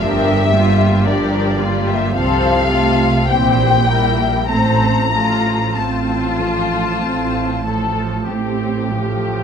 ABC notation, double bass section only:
X:1
M:4/4
L:1/8
Q:1/4=50
K:F
V:1 name="Double bass section" clef=bass
G,,,2 G,,,2 C,,2 B,,,2 | A,,,2 A,,,2 A,,,2 A,,,2 |]